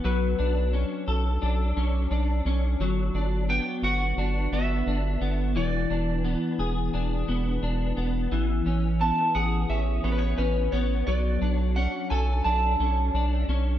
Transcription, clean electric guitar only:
X:1
M:4/4
L:1/8
Q:1/4=87
K:Bdor
V:1 name="Clean electric guitar"
F, D C A D C D C | F, D B, F D B, D B, | E, D B, G D B, D B, | E, C B, G C B, C B, |
F, D C A D C D C |]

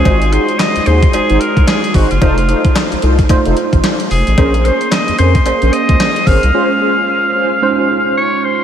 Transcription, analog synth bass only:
X:1
M:4/4
L:1/16
Q:"Swing 16ths" 1/4=111
K:Abmix
V:1 name="Analog synth bass" clef=bass
A,,,3 z2 E,, E,,2 A,,, A,,, z C,, z2 A,,, G,,, | F,,,3 z2 C,, C,,2 F,,, F,,, z =A,,, z2 F,,, A,,, | B,,,3 z2 F,, F,,2 B,,, B,,, z D,, z2 A,,, C,, | z16 |]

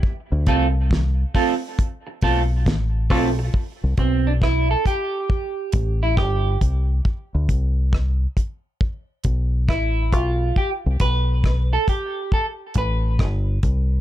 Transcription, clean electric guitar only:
X:1
M:4/4
L:1/16
Q:"Swing 16ths" 1/4=68
K:C
V:1 name="Clean electric guitar"
z2 [A,CFA]2 z2 [A,CFA]2 z2 [A,CFA]2 z2 [A,CFA]2 | z2 C D E A G4- G E G2 z2 | z12 E2 F2 | G2 B3 A G2 A2 B6 |]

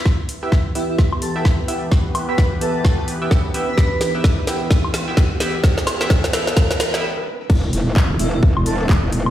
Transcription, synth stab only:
X:1
M:4/4
L:1/16
Q:"Swing 16ths" 1/4=129
K:Em
V:1 name="Synth stab"
z3 [B,EGe] z2 [B,EGe]4- [B,EGe] [B,EGe] z2 [B,EGe] z | z3 [B,EGe] z2 [B,EGe]4- [B,EGe] [B,EGe] z2 [B,EGe] z | z3 [B,EGe] z2 [B,EGe]4- [B,EGe] [B,EGe] z2 [B,EGe] z | z3 [B,EGe] z2 [B,EGe]4- [B,EGe] [B,EGe] z4 |
z16 |]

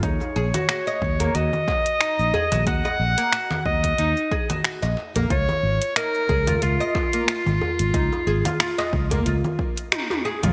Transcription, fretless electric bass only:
X:1
M:4/4
L:1/16
Q:"Swing 16ths" 1/4=91
K:Ebm
V:1 name="Fretless electric bass" clef=bass
E,, z B,,, z3 E,,2 E,, z4 B,,, z B,,, | E,, z B,,, z3 E,,2 E,, z4 B,,, z B,,, | D,, z A,,, z3 D,,2 D,, z4 A,,, z A,,, | D,, z A,,, z3 D,,2 D,, z6 B,,, |]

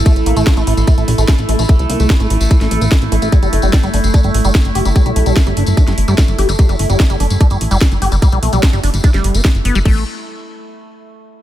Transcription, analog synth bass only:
X:1
M:4/4
L:1/16
Q:1/4=147
K:Gdor
V:1 name="Analog synth bass" clef=bass
z A,,, A,,, A,,, z A,,, A,,, A,,, z A,,, B,,, A,,, z A,,, A,,, A,,, | z C,, C,, C,, z A,,, A,,, A,,, z A,,, A,,, A,,, z A,,, A,,, A,,, | z G,,, G,,, G,,, z G,,, G,,, G,,, z G,,, A,,, G,,, z G,,, G,,, G,,, | z =B,,, B,,, B,,, z G,,, G,,, G,,, z G,,, G,,, G,,, z G,,, G,,, G,,, |
z G,,, G,,, G,,, z G,,, G,,, G,,, z G,,, A,,, G,,, z G,,, G,,, G,,, | z =B,,, B,,, B,,, z G,,, G,,, G,,, z G,,, G,,, G,,, z G,,, G,,, G,,, | A,,,2 z12 z2 |]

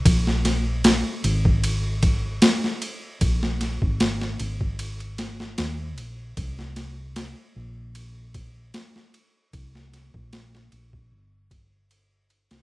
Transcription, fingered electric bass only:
X:1
M:4/4
L:1/16
Q:"Swing 16ths" 1/4=76
K:Ab
V:1 name="Fingered electric bass" clef=bass
B,,,4- B,,, z A,,,6 z4 | B,,,3 A,,,3 A,,,6 E,,2 B,,,2 | C,,4- C,, z B,,,6 z4 | C,,3 B,,,3 B,,,2 G,,,6- G,,, C,, |]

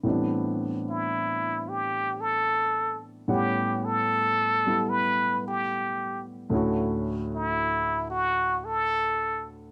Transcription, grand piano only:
X:1
M:4/4
L:1/8
Q:"Swing" 1/4=74
K:Ddor
V:1 name="Grand piano"
[A,,E,G,B,CD]8 | [A,,G,B,^C^f]3 [G,A,B,E]4- [G,A,B,E] | [D,,A,,A,^CE^F]8 |]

